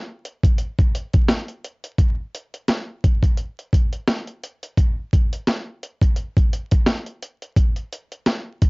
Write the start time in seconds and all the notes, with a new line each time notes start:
0.25 closed hi-hat
0.43 kick, closed hi-hat
0.58 closed hi-hat
0.79 kick, closed hi-hat
0.95 closed hi-hat
1.14 kick, closed hi-hat
1.28 snare, closed hi-hat
1.48 closed hi-hat
1.64 closed hi-hat
1.84 closed hi-hat
1.98 kick, closed hi-hat
2.35 closed hi-hat
2.54 closed hi-hat
2.68 snare, closed hi-hat
3.04 kick, closed hi-hat
3.23 kick, closed hi-hat
3.37 closed hi-hat
3.59 closed hi-hat
3.73 kick, closed hi-hat
3.93 closed hi-hat
4.08 snare, closed hi-hat
4.27 closed hi-hat
4.44 closed hi-hat
4.63 closed hi-hat
4.77 kick, closed hi-hat
5.13 kick, closed hi-hat
5.33 closed hi-hat
5.47 snare, closed hi-hat
5.83 closed hi-hat
6.02 kick, closed hi-hat
6.16 closed hi-hat
6.37 kick, closed hi-hat
6.53 closed hi-hat
6.72 kick, closed hi-hat
6.87 snare, closed hi-hat
7.07 closed hi-hat
7.23 closed hi-hat
7.42 closed hi-hat
7.57 kick, closed hi-hat
7.76 closed hi-hat
7.93 closed hi-hat
8.12 closed hi-hat
8.26 snare, closed hi-hat
8.62 kick, closed hi-hat